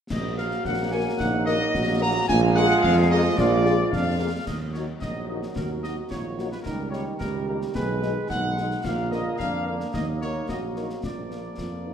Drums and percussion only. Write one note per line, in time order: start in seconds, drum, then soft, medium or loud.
0.10 concert bass drum loud
0.10 snare medium
0.10 crash medium
0.38 snare medium
0.51 snare medium
0.65 concert bass drum medium
0.65 snare medium
1.20 concert bass drum medium
1.20 snare medium
1.47 snare medium
1.74 concert bass drum medium
1.74 snare medium
2.29 concert bass drum loud
2.29 snare medium
2.29 crash soft
2.57 snare medium
2.70 snare medium
2.84 concert bass drum medium
2.84 snare medium
3.38 concert bass drum medium
3.38 snare medium
3.66 snare medium
3.93 concert bass drum medium
3.93 snare medium
4.47 concert bass drum medium
4.47 snare medium
4.47 crash soft
4.74 snare medium
5.02 concert bass drum medium
5.02 snare medium
5.43 snare soft
5.56 concert bass drum medium
5.56 snare medium
5.84 snare medium
6.11 concert bass drum medium
6.11 snare medium
6.39 snare soft
6.52 snare medium
6.66 concert bass drum medium
6.66 snare medium
6.93 snare medium
7.21 concert bass drum medium
7.21 snare medium
7.62 snare medium
7.75 concert bass drum medium
7.75 snare medium
8.02 snare medium
8.30 concert bass drum medium
8.30 snare medium
8.57 snare medium
8.71 snare soft
8.84 concert bass drum medium
8.84 snare medium
8.84 crash soft
9.12 snare medium
9.40 concert bass drum medium
9.40 snare medium
9.80 snare medium
9.94 concert bass drum medium
9.94 snare medium
10.22 snare soft
10.49 concert bass drum medium
10.49 snare medium
10.76 snare soft
10.90 snare soft
11.03 concert bass drum medium
11.03 snare medium
11.31 snare soft
11.58 concert bass drum medium
11.58 snare medium